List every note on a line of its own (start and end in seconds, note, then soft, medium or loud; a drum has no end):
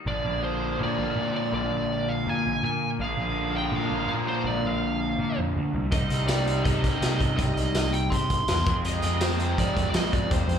0.06 0.23 A#1 medium
0.06 2.98 A#2 medium
0.06 2.99 D3 medium
0.06 3.00 F3 medium
0.06 3.00 A#3 medium
0.06 3.00 D4 medium
0.06 3.01 G#4 medium
0.06 0.43 D5 medium
0.25 0.76 A#1 medium
0.44 0.78 C5 medium
0.80 0.97 A#2 medium
0.80 1.35 D5 medium
0.98 1.07 A#1 medium
1.16 1.54 A#2 medium
1.36 1.53 D5 medium
1.53 1.70 A#1 medium
1.53 2.10 D5 medium
1.71 2.22 A#1 medium
2.09 2.29 F5 loud
2.27 2.43 A#2 loud
2.27 2.63 G#5 medium
2.45 2.53 A#1 medium
2.63 3.01 A#2 medium
2.63 2.89 G#5 medium
2.99 3.16 A#1 medium
2.99 5.92 A#2 medium
2.99 5.91 D3 medium
2.99 5.91 F3 medium
2.99 5.92 A#3 medium
2.99 5.93 D4 medium
2.99 5.93 G#4 medium
2.99 3.56 F5 loud
3.18 3.69 A#1 medium
3.56 3.75 G5 loud
3.72 3.89 A#2 medium
3.72 4.07 F5 loud
3.90 3.99 A#1 medium
4.08 4.46 A#2 medium
4.08 4.13 F5 medium
4.28 4.45 C5 medium
4.44 4.62 A#1 loud
4.44 4.67 D5 medium
4.63 5.14 A#1 medium
4.63 5.38 F5 medium
5.19 5.35 A#2 loud
5.38 5.54 F2 medium
5.55 5.72 D2 medium
5.74 5.92 C2 medium
5.91 6.09 C2 medium
5.91 8.65 C3 medium
5.91 8.66 G3 medium
5.91 8.67 C4 medium
5.91 8.68 D#4 medium
5.91 8.67 G4 medium
5.91 6.26 D#5 medium
5.91 kick loud
5.91 closed hi-hat medium
6.10 6.61 C2 medium
6.10 closed hi-hat medium
6.28 6.62 D5 medium
6.28 snare loud
6.28 closed hi-hat medium
6.28 tambourine loud
6.48 closed hi-hat medium
6.64 6.82 C3 medium
6.64 7.18 D#5 medium
6.64 kick medium
6.64 closed hi-hat medium
6.84 6.92 C2 medium
6.84 kick medium
6.84 closed hi-hat medium
7.01 7.40 C3 medium
7.01 snare loud
7.01 closed hi-hat medium
7.01 tambourine loud
7.19 7.36 D#5 medium
7.19 kick medium
7.19 closed hi-hat medium
7.37 7.55 C2 medium
7.37 7.94 D#5 medium
7.37 kick medium
7.37 closed hi-hat medium
7.57 8.08 C2 medium
7.57 closed hi-hat medium
7.75 snare loud
7.75 closed hi-hat medium
7.75 tambourine loud
7.93 8.12 G5 loud
7.93 closed hi-hat medium
8.10 8.28 C3 loud
8.10 8.48 C6 loud
8.10 kick medium
8.10 closed hi-hat medium
8.30 8.38 C2 medium
8.30 kick medium
8.30 closed hi-hat medium
8.48 8.66 E2 medium
8.48 8.74 C6 medium
8.48 snare loud
8.48 closed hi-hat medium
8.48 tambourine loud
8.58 snare soft
8.66 10.59 F2 medium
8.66 9.00 F2 medium
8.66 10.59 C3 medium
8.66 10.59 F3 medium
8.66 10.59 G#3 medium
8.66 10.59 C4 medium
8.66 10.59 G#4 medium
8.66 kick loud
8.66 closed hi-hat medium
8.85 9.22 D#5 medium
8.85 closed hi-hat medium
9.02 9.54 F2 medium
9.02 closed hi-hat medium
9.21 9.59 C5 loud
9.21 snare loud
9.21 closed hi-hat medium
9.21 tambourine loud
9.40 closed hi-hat medium
9.58 9.75 F3 medium
9.58 9.89 D5 medium
9.58 kick medium
9.58 closed hi-hat medium
9.76 9.85 F2 medium
9.76 kick medium
9.76 closed hi-hat medium
9.90 9.95 D5 medium
9.90 closed hi-hat loud
9.90 tambourine loud
9.94 10.32 F3 medium
9.94 10.13 D#5 medium
9.94 snare loud
10.05 snare soft
10.13 10.33 D5 medium
10.13 kick medium
10.13 closed hi-hat medium
10.31 10.47 F2 loud
10.31 10.59 C5 medium
10.31 kick loud
10.31 closed hi-hat medium
10.48 10.59 F2 medium
10.48 closed hi-hat medium